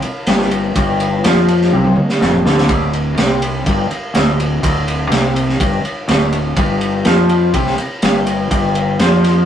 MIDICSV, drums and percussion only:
0, 0, Header, 1, 2, 480
1, 0, Start_track
1, 0, Tempo, 484262
1, 755, Time_signature, 4, 2, 24, 8
1, 9370, End_track
2, 0, Start_track
2, 0, Title_t, "Drums"
2, 22, Note_on_c, 9, 51, 58
2, 121, Note_off_c, 9, 51, 0
2, 263, Note_on_c, 9, 51, 78
2, 270, Note_on_c, 9, 38, 85
2, 362, Note_off_c, 9, 51, 0
2, 369, Note_off_c, 9, 38, 0
2, 395, Note_on_c, 9, 38, 31
2, 494, Note_off_c, 9, 38, 0
2, 508, Note_on_c, 9, 51, 62
2, 607, Note_off_c, 9, 51, 0
2, 748, Note_on_c, 9, 51, 88
2, 750, Note_on_c, 9, 36, 98
2, 847, Note_off_c, 9, 51, 0
2, 849, Note_off_c, 9, 36, 0
2, 991, Note_on_c, 9, 51, 65
2, 1090, Note_off_c, 9, 51, 0
2, 1231, Note_on_c, 9, 51, 86
2, 1238, Note_on_c, 9, 38, 99
2, 1330, Note_off_c, 9, 51, 0
2, 1337, Note_off_c, 9, 38, 0
2, 1471, Note_on_c, 9, 51, 64
2, 1570, Note_off_c, 9, 51, 0
2, 1599, Note_on_c, 9, 38, 31
2, 1698, Note_off_c, 9, 38, 0
2, 1707, Note_on_c, 9, 48, 52
2, 1807, Note_off_c, 9, 48, 0
2, 1826, Note_on_c, 9, 48, 55
2, 1926, Note_off_c, 9, 48, 0
2, 1941, Note_on_c, 9, 47, 55
2, 2040, Note_off_c, 9, 47, 0
2, 2072, Note_on_c, 9, 38, 56
2, 2171, Note_off_c, 9, 38, 0
2, 2194, Note_on_c, 9, 38, 73
2, 2293, Note_off_c, 9, 38, 0
2, 2308, Note_on_c, 9, 45, 67
2, 2408, Note_off_c, 9, 45, 0
2, 2435, Note_on_c, 9, 38, 81
2, 2534, Note_off_c, 9, 38, 0
2, 2555, Note_on_c, 9, 38, 77
2, 2654, Note_off_c, 9, 38, 0
2, 2665, Note_on_c, 9, 51, 87
2, 2668, Note_on_c, 9, 36, 102
2, 2764, Note_off_c, 9, 51, 0
2, 2768, Note_off_c, 9, 36, 0
2, 2907, Note_on_c, 9, 51, 53
2, 3006, Note_off_c, 9, 51, 0
2, 3147, Note_on_c, 9, 51, 75
2, 3154, Note_on_c, 9, 38, 98
2, 3246, Note_off_c, 9, 51, 0
2, 3253, Note_off_c, 9, 38, 0
2, 3389, Note_on_c, 9, 51, 69
2, 3489, Note_off_c, 9, 51, 0
2, 3628, Note_on_c, 9, 51, 78
2, 3630, Note_on_c, 9, 36, 90
2, 3728, Note_off_c, 9, 51, 0
2, 3730, Note_off_c, 9, 36, 0
2, 3873, Note_on_c, 9, 51, 52
2, 3972, Note_off_c, 9, 51, 0
2, 4109, Note_on_c, 9, 51, 75
2, 4116, Note_on_c, 9, 38, 100
2, 4208, Note_off_c, 9, 51, 0
2, 4215, Note_off_c, 9, 38, 0
2, 4359, Note_on_c, 9, 51, 61
2, 4458, Note_off_c, 9, 51, 0
2, 4593, Note_on_c, 9, 36, 99
2, 4595, Note_on_c, 9, 51, 94
2, 4692, Note_off_c, 9, 36, 0
2, 4694, Note_off_c, 9, 51, 0
2, 4835, Note_on_c, 9, 51, 59
2, 4934, Note_off_c, 9, 51, 0
2, 5071, Note_on_c, 9, 51, 75
2, 5078, Note_on_c, 9, 38, 86
2, 5170, Note_off_c, 9, 51, 0
2, 5177, Note_off_c, 9, 38, 0
2, 5314, Note_on_c, 9, 51, 65
2, 5413, Note_off_c, 9, 51, 0
2, 5441, Note_on_c, 9, 38, 29
2, 5540, Note_off_c, 9, 38, 0
2, 5552, Note_on_c, 9, 36, 96
2, 5555, Note_on_c, 9, 51, 83
2, 5651, Note_off_c, 9, 36, 0
2, 5654, Note_off_c, 9, 51, 0
2, 5796, Note_on_c, 9, 51, 54
2, 5895, Note_off_c, 9, 51, 0
2, 6031, Note_on_c, 9, 51, 76
2, 6038, Note_on_c, 9, 38, 95
2, 6130, Note_off_c, 9, 51, 0
2, 6137, Note_off_c, 9, 38, 0
2, 6269, Note_on_c, 9, 51, 59
2, 6369, Note_off_c, 9, 51, 0
2, 6506, Note_on_c, 9, 51, 84
2, 6508, Note_on_c, 9, 36, 100
2, 6606, Note_off_c, 9, 51, 0
2, 6607, Note_off_c, 9, 36, 0
2, 6750, Note_on_c, 9, 51, 57
2, 6849, Note_off_c, 9, 51, 0
2, 6985, Note_on_c, 9, 51, 66
2, 6992, Note_on_c, 9, 38, 103
2, 7085, Note_off_c, 9, 51, 0
2, 7092, Note_off_c, 9, 38, 0
2, 7229, Note_on_c, 9, 51, 62
2, 7328, Note_off_c, 9, 51, 0
2, 7471, Note_on_c, 9, 36, 88
2, 7471, Note_on_c, 9, 51, 71
2, 7570, Note_off_c, 9, 36, 0
2, 7570, Note_off_c, 9, 51, 0
2, 7599, Note_on_c, 9, 38, 31
2, 7698, Note_off_c, 9, 38, 0
2, 7711, Note_on_c, 9, 51, 58
2, 7810, Note_off_c, 9, 51, 0
2, 7951, Note_on_c, 9, 51, 80
2, 7958, Note_on_c, 9, 38, 94
2, 8050, Note_off_c, 9, 51, 0
2, 8057, Note_off_c, 9, 38, 0
2, 8193, Note_on_c, 9, 51, 68
2, 8292, Note_off_c, 9, 51, 0
2, 8435, Note_on_c, 9, 36, 87
2, 8435, Note_on_c, 9, 51, 84
2, 8534, Note_off_c, 9, 36, 0
2, 8534, Note_off_c, 9, 51, 0
2, 8674, Note_on_c, 9, 51, 54
2, 8773, Note_off_c, 9, 51, 0
2, 8914, Note_on_c, 9, 51, 71
2, 8921, Note_on_c, 9, 38, 98
2, 9013, Note_off_c, 9, 51, 0
2, 9020, Note_off_c, 9, 38, 0
2, 9162, Note_on_c, 9, 51, 66
2, 9168, Note_on_c, 9, 38, 32
2, 9261, Note_off_c, 9, 51, 0
2, 9268, Note_off_c, 9, 38, 0
2, 9370, End_track
0, 0, End_of_file